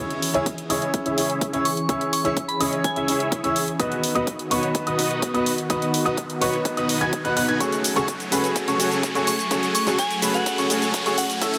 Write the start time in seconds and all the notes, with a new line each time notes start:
Already playing: C#4
0.00 E3 C#4 E4 G#4 C#5 E5 E6, riser
0.10 closed hi-hat
0.22 open hi-hat
0.34 C#4 E4 G#4 C#5 E5 E6, closed hi-hat
0.46 kick, closed hi-hat
0.58 closed hi-hat
0.69 C#4 E4 G#4 C#5 D#5 D#6, open hi-hat
0.82 closed hi-hat
0.94 kick, closed hi-hat
1.06 C#4 E4 G#4 C#5 E5 E6, closed hi-hat
1.17 C#4 E4 G#4 C#5, open hi-hat
1.30 closed hi-hat
1.41 kick, closed hi-hat
1.53 C#4 E4 G#4 C#5 E5 E6, closed hi-hat
1.65 C#6, open hi-hat
1.77 closed hi-hat
1.88 C#4 E4 G#4 C#5 E5 E6, kick, closed hi-hat
2.01 closed hi-hat
2.13 C#6, open hi-hat
2.24 C#4 E4 G#4 C#5 E5 E6, closed hi-hat
2.37 kick, closed hi-hat
2.48 B5, closed hi-hat
2.60 C#4 E4 G#4 C#5 D#5 D#6, open hi-hat
2.73 closed hi-hat
2.84 G#5, kick, closed hi-hat
2.96 C#4 E4 G#4 C#5 E5 E6, closed hi-hat
3.08 C#4 E4 G#4 C#5, open hi-hat
3.20 closed hi-hat
3.32 kick, closed hi-hat
3.43 C#4 E4 G#4 C#5 E5 E6, closed hi-hat
3.56 open hi-hat
3.68 closed hi-hat
3.79 D#3 B3 D#4 F#4 B4 D#5 D#6, kick, closed hi-hat
3.92 closed hi-hat
4.04 open hi-hat
4.15 B3 D#4 F#4 B4 D#5 D#6, closed hi-hat
4.27 kick, closed hi-hat
4.39 closed hi-hat
4.50 B3 D#4 F#4 B4 C#5 C#6, open hi-hat
4.63 closed hi-hat
4.75 kick, closed hi-hat
4.87 B3 D#4 F#4 B4 D#5 D#6, closed hi-hat
4.98 B3 D#4 F#4 B4, open hi-hat
5.11 closed hi-hat
5.22 kick, closed hi-hat
5.34 B3 D#4 F#4 B4 D#5 D#6, closed hi-hat
5.46 open hi-hat
5.58 closed hi-hat
5.69 B3 D#4 F#4 B4 D#5 D#6, kick, closed hi-hat
5.82 closed hi-hat
5.94 open hi-hat
6.05 B3 D#4 F#4 B4 D#5 D#6, closed hi-hat
6.17 kick, closed hi-hat
6.30 closed hi-hat
6.41 B3 D#4 F#4 B4 C#5 C#6, open hi-hat
6.53 closed hi-hat
6.65 kick, closed hi-hat
6.77 B3 D#4 F#4 B4 D#5 D#6, closed hi-hat
6.89 open hi-hat
7.00 B3 D#4 F#4 B4 G#5 G#6, closed hi-hat
7.13 kick, closed hi-hat
7.24 B3 D#4 F#4 B4 F#5 F#6, closed hi-hat
7.37 B3 D#4 F#4 B4 F#5 F#6, open hi-hat
7.48 B3 D#4 F#4 B4 G#5 G#6, closed hi-hat
7.60 F#3 A3 C#4 F#4 G#4 A4 C#5 G#5 C#6, kick, closed hi-hat, shaker
7.72 closed hi-hat, shaker
7.84 open hi-hat, shaker
7.96 A3 C#4 F#4 G#4 A4 C#5 C#6, closed hi-hat, shaker
8.08 kick, closed hi-hat, shaker
8.20 closed hi-hat, shaker
8.31 A3 C#4 F#4 G#4 A4 B4 B5, open hi-hat, shaker
8.44 closed hi-hat, shaker
8.56 kick, closed hi-hat, shaker
8.68 C#4 F#4 G#4 A4 C#5 C#6, closed hi-hat, shaker
8.79 A3 C#4 F#4 G#4, open hi-hat, shaker
8.91 closed hi-hat, shaker
9.03 kick, closed hi-hat, shaker
9.15 A3 C#4 F#4 G#4 A4 C#5 C#6, closed hi-hat, shaker
9.27 C#6, open hi-hat, shaker
9.39 closed hi-hat, shaker
9.50 A3 C#4 F#4 G#4 A4 C#5 C#6, kick, closed hi-hat, shaker
9.63 closed hi-hat, shaker
9.75 C#6, open hi-hat, shaker
9.86 A3 C#4 F#4 G#4 A4 C#5 C#6, closed hi-hat, shaker
9.99 G#5, kick, closed hi-hat, shaker
10.11 closed hi-hat, shaker
10.22 A3 C#4 F#4 G#4 A4 B4 B5, open hi-hat, shaker
10.34 F#5, closed hi-hat, shaker
10.46 kick, closed hi-hat, shaker
10.58 C#4 F#4 G#4 A4 C#5 C#6, closed hi-hat, shaker
10.70 A3 C#4 F#4 G#4, open hi-hat, shaker
10.82 closed hi-hat, shaker
10.94 kick, closed hi-hat, shaker
11.05 A3 C#4 F#4 G#4 A4 C#5 C#6, closed hi-hat, shaker
11.18 F#5, open hi-hat, shaker
11.30 closed hi-hat, shaker
11.41 E3 A3 C#4 E4 A4 C#5 E5 E6, kick, closed hi-hat, shaker
11.54 closed hi-hat, shaker